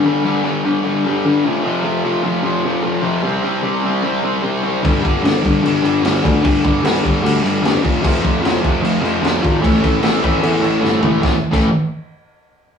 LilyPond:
<<
  \new Staff \with { instrumentName = "Distorted electric guitar" } { \clef bass \time 4/4 \key a \minor \tempo 4 = 150 <g, d g>8 <g, d g>8 <g, d g>8 <g, d g>8 <g, d g>8 <g, d g>8 <g, d g>8 <f, c f>8 | <f, c f>8 <f, c f>8 <f, c f>8 <f, c f>8 <f, c f>8 <f, c f>8 <f, c f>8 <f, c f>8 | <c g c'>8 <c g c'>8 <c g c'>8 <c g c'>8 <c g c'>8 <c g c'>8 <c g c'>8 <c g c'>8 | <g, d g>8 <g, d g>8 <g, d g>8 <g, d g>8 <g, d g>8 <g, d g>8 <g, d g>8 <g, d g>8 |
<g, d g>8 <g, d g>8 <g, d g>8 <g, d g>8 <g, d g>8 <g, d g>8 <g, d g>8 <f, c f>8 | <f, c f>8 <f, c f>8 <f, c f>8 <f, c f>8 <f, c f>8 <f, c f>8 <f, c f>8 <f, c f>8 | <a, e a>8 <a, e a>8 <a, e a>8 <a, e a>8 <a, e a>8 <a, e a>8 <a, e a>8 <a, e a>8 | <a, e a>16 r8 <a, e a>8 r2 r8. | }
  \new Staff \with { instrumentName = "Picked electric bass" } { \clef bass \time 4/4 \key a \minor r1 | r1 | r1 | g,,8 g,,8 g,,8 g,,8 g,,8 g,,8 g,,8 d,8 |
g,,8 g,,8 g,,8 g,,8 d,8 g,,8 f,,8 f,,8 | f,,8 f,,8 f,,8 f,,8 f,,8 f,,8 f,,8 gis,,8 | a,,8 a,,8 a,,8 a,,8 e,8 a,,8 g,,8 a,,8 | a,,16 r8 a,,8 r2 r8. | }
  \new DrumStaff \with { instrumentName = "Drums" } \drummode { \time 4/4 r4 r4 r4 r4 | r4 r4 r4 r4 | r4 r4 r4 r4 | <cymc bd>8 <cymc bd>8 <cymc sn>8 <cymc bd>8 cymc8 cymc8 <cymc sn>8 <cymc bd>8 |
<cymc bd>8 <cymc bd>8 <cymc sn>8 <cymc bd>8 cymc8 cymc8 <cymc sn>8 <cymc bd>8 | <cymc bd>8 <cymc bd>8 <cymc sn>8 <cymc bd>8 cymc8 cymc8 <cymc sn>8 <cymc bd>8 | <cymc bd>8 <cymc bd>8 <cymc sn>8 <cymc bd>8 cymc8 cymc8 sn8 tomfh8 | <bd sn>8. <cymc bd>16 r4 r4 r4 | }
>>